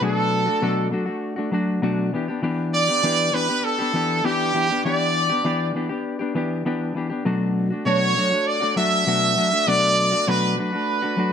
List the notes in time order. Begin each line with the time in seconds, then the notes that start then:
0.01 B2 F#3 A3 D4 F#4 A4
0.46 A3 D4 F#4
0.62 B2 F#3 A3 D4 F#4
0.91 F#3 A3 D4 F#4
1.06 A3 D4 F#4
1.36 A3 D4 F#4
1.51 F#3 A3 D4 F#4
1.82 B2 F#3 A3 D4 F#4
2.13 E3 B3 D4 G4
2.28 B3 D4 G4
2.42 E3 B3 D4 G4
2.75 D5
2.88 B3 D4 G4
3.03 E3 B3 D4 G4
3.33 E3 B3 D4 G4 B4
3.48 B3 D4 G4
3.65 A4
3.78 B3 D4 G4
3.93 E3 B3 D4 G4
4.24 E3 B3 D4 G4
4.54 E3 B3 D4 G4
4.69 B3 D4 G4
4.85 E3 B3 D4 G4 D5
5.29 B3 D4 G4
5.44 E3 B3 D4 G4
5.74 E3 B3 D4 G4
5.89 B3 D4 G4
6.19 B3 D4 G4
6.35 E3 B3 D4 G4
6.65 E3 B3 D4 G4
6.95 E3 B3 D4 G4
7.10 B3 D4 G4
7.25 B2 F#3 A3 D4 F#4
7.70 A3 D4 F#4
7.85 B2 F#3 A3 D4 F#4 C#5
8.16 F#3 A3 D4 F#4
8.30 A3 D4 F#4
8.47 D5
8.60 A3 D4 F#4
8.76 F#3 A3 D4 F#4 E5
9.06 B2 F#3 A3 D4 F#4
9.36 F#3 A3 D4 F#4
9.51 A3 D4 F#4
9.67 B2 F#3 A3 D4 F#4 D5
10.12 A3 D4 F#4
10.27 B2 F#3 A3 D4 F#4 B4
10.57 F#3 A3 D4 F#4 B4
10.72 A3 D4 F#4
11.02 A3 D4 F#4
11.17 F#3 A3 D4 F#4